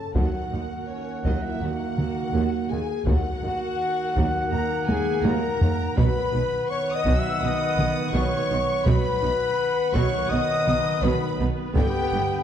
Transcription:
Already playing: trombone section C#3 C#4, viola section A4, french horn section A4, trumpet A5, flute A5, violin section A5
0.13 double bass section D#2, cello section D#2, trombone section D#3 A#3, viola section F#3 A#4, french horn section F#4, flute F#5, violin section F#5, trumpet F#5, taiko
0.51 double bass section D#2, cello section D#2, viola section D#4
0.87 french horn section C#4, flute C#5, violin section C#5
1.24 double bass section D#2, cello section D#2, viola section F#3, french horn section D#4, flute D#5, violin section D#5, taiko
1.42 french horn section E4, flute E5, violin section E5
1.60 double bass section D#2, cello section D#2, viola section D#4, french horn section F#4, violin section F#5, flute F#5
1.97 double bass section D#2, cello section D#2, viola section A#3, taiko mid
2.34 double bass section D#2, cello section D#2, viola section F#3
2.70 double bass section D#2, cello section D#2, viola section D#4, french horn section G#4, violin section G#5, flute G#5
3.05 double bass section D#2, cello section D#2, trombone section D#3 A#3, viola section F#3 A#4, french horn section F#4, violin section F#5, trumpet F#5, flute F#5, taiko
3.42 double bass section D#2, cello section D#2, viola section D#4
4.14 double bass section D#2, cello section D#2, viola section F#3, taiko
4.50 double bass section D#2, cello section D#2, viola section D#4, french horn section A#4, violin section A#5, flute A#5
4.87 double bass section D#2, cello section D#2, viola section A#3, french horn section G#4, violin section G#5, flute G#5, taiko high
5.22 double bass section D#2, cello section D#2, viola section F#3, french horn section A#4, violin section A#5, taiko high
5.27 flute A#5
5.59 double bass section D#2, cello section D#2, viola section D#4, taiko low
5.95 double bass section B1, cello section B2, trombone section D#3 B3, viola section F#3 B4, french horn section B4, trumpet F#5, violin section B5, flute B5, taiko
6.32 double bass section B1, cello section B2, viola section D#4
6.69 french horn section C#5, violin section C#6, flute C#6
6.91 french horn section D#5, flute D#6, violin section D#6
7.05 double bass section B1, cello section B2, viola section F#3, taiko
7.16 french horn section E5, flute E6, violin section E6
7.40 double bass section B1, cello section B2, viola section D#4, french horn section D#5, violin section D#6, flute D#6
7.77 double bass section B1, cello section B2, viola section B3, taiko mid
8.13 double bass section B1, cello section B2, viola section F#3, french horn section C#5, violin section C#6, flute C#6
8.49 double bass section B1, cello section B2, viola section D#4
8.84 double bass section B1, trombone section D#3 B3, viola section F#3 B4, trumpet F#5, flute B5, violin section B5, taiko
8.88 cello section B2, french horn section B4
9.21 double bass section B1, cello section B2, viola section D#4
9.94 double bass section B1, cello section B2, viola section F#3, french horn section C#5, violin section C#6, flute C#6, taiko
10.29 double bass section B1, cello section B2, viola section D#4, french horn section D#5, flute D#6, violin section D#6
10.67 double bass section B1, cello section B2, viola section B3, taiko mid
11.03 double bass section B1, cello section B2, viola section F#3, french horn section B4, violin section B5, flute B5
11.39 double bass section B1, cello section B2, viola section D#4
11.73 double bass section G1, cello section G2, viola section D3, trombone section D3, french horn section G4, flute G5, violin section G5, trumpet G5, taiko
11.78 violin section G5
12.12 double bass section G1, cello section G2, viola section B3

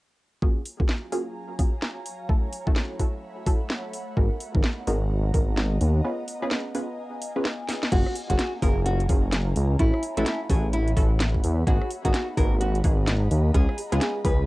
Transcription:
0.42 ambient pad F#3 C#5 F5 G#5 A#5, synth stab A#3 C#4 F4 F#4 G#4, kick
0.65 open hi-hat
0.80 synth stab A#3 C#4 F4 F#4 G#4, kick
0.89 snare
1.12 synth stab A#3 C#4 F4 F#4 G#4, open hi-hat
1.59 synth stab A#3 C#4 F4 F#4 G#4, kick, open hi-hat
1.82 snare
2.06 open hi-hat
2.29 synth stab A3 C#4 E4 F#4 A4, ambient pad A3 E5 F#5 B5, kick
2.53 open hi-hat
2.67 synth stab A3 C#4 E4 F#4 A4, kick
2.76 snare
3.00 synth stab A3 C#4 E4 F#4 A4, kick, open hi-hat
3.47 synth stab A3 C#4 E4 F#4 A4, kick, open hi-hat
3.70 snare
3.93 open hi-hat
4.17 detuned saw bass G#1, ambient pad B3 D#5 A#5, synth stab B3 D#4 F#4 G#4 A#4, kick
4.40 open hi-hat
4.55 detuned saw bass G#1, synth stab B3 D#4 F#4 G#4 A#4, kick
4.64 snare
4.87 detuned saw bass G#1, synth stab B3 D#4 F#4 G#4 A#4, open hi-hat
5.34 detuned saw bass G#1, synth stab B3 D#4 F#4 G#4 A#4, kick, open hi-hat
5.58 snare
5.81 detuned saw bass D#2, open hi-hat
6.04 synth stab B3 C#4 F4 G#4 B4, ambient pad F5 G#5
6.28 open hi-hat
6.42 synth stab B3 C#4 F4 G#4 B4
6.51 snare
6.75 synth stab B3 C#4 F4 G#4 B4, open hi-hat
7.22 open hi-hat
7.36 synth stab B3 C#4 F4 G#4 B4
7.45 snare
7.69 snare, open hi-hat
7.83 snare
7.92 detuned saw bass F#1, synth stab A#3 C#4 F4 F#4 G#4, nylon-string guitar F#4, ambient pad C#5 F5 G#5 A#5, kick, closed hi-hat, crash
8.06 cross-stick
8.15 open hi-hat
8.30 detuned saw bass F#1, synth stab A#3 C#4 F4 F#4 G#4, nylon-string guitar F#4, kick, closed hi-hat
8.39 snare, closed hi-hat
8.62 detuned saw bass F#1, synth stab A#3 C#4 F4 F#4 G#4, nylon-string guitar A#4, kick, open hi-hat
8.85 nylon-string guitar F#4, closed hi-hat
9.00 closed hi-hat
9.09 detuned saw bass F#1, synth stab A#3 C#4 F4 F#4 G#4, kick, open hi-hat
9.33 snare, closed hi-hat
9.56 detuned saw bass C#2, open hi-hat
9.79 detuned saw bass A1, synth stab A3 C#4 E4 F#4 A4, nylon-string guitar E4, ambient pad C#5 E5 F#5 B5, kick, closed hi-hat
9.94 cross-stick
10.03 open hi-hat
10.17 detuned saw bass A1, synth stab A3 C#4 E4 F#4 A4, nylon-string guitar E4, cross-stick, closed hi-hat
10.26 snare, closed hi-hat
10.50 detuned saw bass A1, synth stab A3 C#4 E4 F#4 A4, nylon-string guitar G#4, kick, open hi-hat
10.73 nylon-string guitar E4, closed hi-hat
10.88 closed hi-hat
10.97 detuned saw bass A1, synth stab A3 C#4 E4 F#4 A4, kick, open hi-hat
11.20 snare, closed hi-hat
11.34 kick
11.44 detuned saw bass E2, open hi-hat
11.67 detuned saw bass G#1, synth stab A#3 B3 D#4 F#4 G#4, nylon-string guitar F#4, ambient pad D#5 F#5 A#5 B5, kick, closed hi-hat
11.81 cross-stick
11.90 open hi-hat
12.05 detuned saw bass G#1, synth stab A#3 B3 D#4 F#4 G#4, nylon-string guitar F#4, kick, closed hi-hat
12.14 snare, closed hi-hat
12.37 detuned saw bass G#1, synth stab A#3 B3 D#4 F#4 G#4, nylon-string guitar A#4, kick, open hi-hat
12.61 nylon-string guitar F#4, closed hi-hat
12.75 closed hi-hat
12.84 detuned saw bass G#1, synth stab A#3 B3 D#4 F#4 G#4, kick, open hi-hat
13.08 snare, closed hi-hat
13.31 detuned saw bass D#2, open hi-hat
13.54 detuned saw bass C#2, synth stab G#3 B3 C#4 F4 G#4, nylon-string guitar G#4, ambient pad F5 G#5, kick, closed hi-hat
13.69 cross-stick
13.78 open hi-hat
13.92 detuned saw bass C#2, synth stab G#3 B3 C#4 F4 G#4, nylon-string guitar G#4, cross-stick, closed hi-hat
14.01 snare, closed hi-hat
14.25 detuned saw bass C#2, synth stab G#3 B3 C#4 F4 G#4, nylon-string guitar B4, kick, open hi-hat

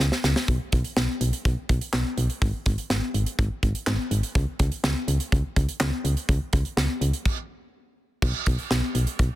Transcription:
0.00 fm bass C#2, snare
0.12 snare
0.24 fm bass C#2, snare
0.36 snare
0.48 fm bass B1, kick, closed hi-hat
0.72 fm bass B1, kick, closed hi-hat
0.84 closed hi-hat
0.97 fm bass B1, snare
1.21 fm bass B1, closed hi-hat
1.33 closed hi-hat
1.45 fm bass B1, kick, closed hi-hat
1.69 fm bass B1, kick, closed hi-hat
1.81 closed hi-hat
1.93 fm bass B1, snare, clap
2.18 fm bass B1, closed hi-hat
2.30 closed hi-hat
2.42 fm bass G#1, kick, closed hi-hat
2.66 fm bass G#1, kick, closed hi-hat
2.78 closed hi-hat
2.90 fm bass G#1, snare
3.14 fm bass G#1, closed hi-hat
3.26 closed hi-hat
3.39 fm bass G#1, kick, closed hi-hat
3.63 fm bass G#1, kick, closed hi-hat
3.75 closed hi-hat
3.87 fm bass G#1, snare, clap
4.11 fm bass G#1, closed hi-hat
4.23 closed hi-hat
4.35 fm bass C#2, kick, closed hi-hat
4.59 fm bass C#2, kick, closed hi-hat
4.72 closed hi-hat
4.84 fm bass C#2, snare
5.08 fm bass C#2, closed hi-hat
5.20 closed hi-hat
5.32 fm bass C#2, kick, closed hi-hat
5.56 fm bass C#2, kick, closed hi-hat
5.69 closed hi-hat
5.80 fm bass C#2, snare, clap
6.04 fm bass C#2, closed hi-hat
6.17 closed hi-hat
6.29 fm bass C#2, kick, closed hi-hat
6.53 fm bass C#2, kick, closed hi-hat
6.65 closed hi-hat
6.77 fm bass C#2, snare
7.01 fm bass C#2, closed hi-hat
7.13 closed hi-hat
7.25 kick, crash
8.22 fm bass B1, kick, crash
8.46 fm bass B1, kick, closed hi-hat
8.59 closed hi-hat
8.71 fm bass B1, snare
8.95 fm bass B1, closed hi-hat
9.07 closed hi-hat
9.19 fm bass B1, kick, closed hi-hat

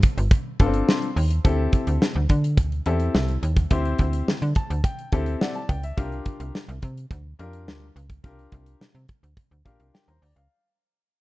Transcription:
0.03 kick, closed hi-hat
0.18 fm bass G1, closed hi-hat
0.31 kick, closed hi-hat
0.60 fm bass G1, grand piano B3 D4 F4 A4, kick, closed hi-hat
0.66 grand piano C4
0.74 closed hi-hat
0.88 grand piano C6, snare
1.02 closed hi-hat
1.16 fm bass D#2, open hi-hat
1.31 closed hi-hat
1.45 fm bass D2, grand piano C4 E4 G4 A4, kick, closed hi-hat
1.73 kick, closed hi-hat
1.87 fm bass D2, closed hi-hat
2.02 snare
2.15 fm bass D2
2.29 fm bass D3, kick, closed hi-hat
2.44 closed hi-hat
2.57 fm bass D2, kick, closed hi-hat
2.72 closed hi-hat
2.86 fm bass E2, grand piano C4 E4 G4 A4, closed hi-hat
3.00 closed hi-hat
3.15 fm bass C2, snare
3.28 closed hi-hat
3.43 fm bass D#2, closed hi-hat
3.56 kick, closed hi-hat
3.71 fm bass D2, grand piano C4 E4 G4 C5, kick, closed hi-hat
3.85 closed hi-hat
3.99 fm bass D2, kick, closed hi-hat
4.13 closed hi-hat
4.28 fm bass D3, snare
4.42 fm bass D3, closed hi-hat
4.55 grand piano A5, kick, closed hi-hat
4.70 fm bass D2, closed hi-hat
4.84 grand piano G5, kick, closed hi-hat
4.99 closed hi-hat
5.12 fm bass D2, grand piano C4 E4 G4 A4, kick, closed hi-hat
5.26 closed hi-hat
5.41 grand piano D5 F#5, snare
5.55 grand piano A5, closed hi-hat
5.69 fm bass C#2, grand piano G5, kick, closed hi-hat
5.83 grand piano E5, closed hi-hat
5.97 fm bass C2, grand piano D4 F4 G4 A#4, kick, closed hi-hat
6.12 closed hi-hat
6.26 kick, closed hi-hat
6.40 fm bass C2, closed hi-hat
6.55 snare
6.68 fm bass C2, closed hi-hat
6.82 fm bass C3, kick, closed hi-hat
6.97 closed hi-hat
7.11 fm bass D2, kick, closed hi-hat
7.39 fm bass F2, grand piano D4 F4 G4 A#4, closed hi-hat
7.53 closed hi-hat
7.67 fm bass D2, snare
7.96 fm bass C#2, closed hi-hat
8.10 kick, closed hi-hat
8.24 fm bass C2, grand piano D4 F4 G4 A#4, kick, closed hi-hat
8.39 closed hi-hat
8.52 fm bass C2, kick, closed hi-hat
8.66 closed hi-hat
8.81 fm bass C3, snare
8.95 fm bass C3, closed hi-hat
9.09 kick, closed hi-hat
9.23 fm bass D2, closed hi-hat
9.37 kick, closed hi-hat
9.51 fm bass D2, closed hi-hat
9.65 fm bass A#1, grand piano D4 F4 G4 A#4 F5, kick, closed hi-hat
9.80 fm bass C2, closed hi-hat
9.94 grand piano G5, snare
10.08 fm bass D#2, grand piano C5 A#5, closed hi-hat
10.22 fm bass D2, grand piano D5, open hi-hat
10.36 fm bass C#2, grand piano F5, closed hi-hat

